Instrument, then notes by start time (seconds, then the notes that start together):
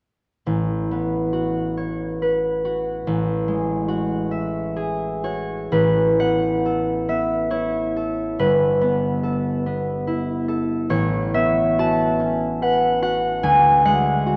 harp
0.47 A1
0.91 B3
1.33 F#4
1.78 C#5
2.22 B4
2.65 F#4
3.07 A1
3.48 G#3
3.88 F#4
4.31 E5
4.77 G#4
5.24 F#4 C#5
5.72 A1 B4
6.20 B3 F#5
6.66 A4
7.08 B3 E5
7.50 E4 C#5
7.96 A4
8.39 G1 B4
8.81 B3
9.23 A4
9.66 B3
10.07 E4
10.48 A4
10.90 A1 C#5
11.34 B3 E5
11.79 F#4 A5
12.20 C#4
12.62 B4 F#5
13.02 F#4 F#5
13.43 D2 G#5
13.85 G#3 F#5
14.26 F#4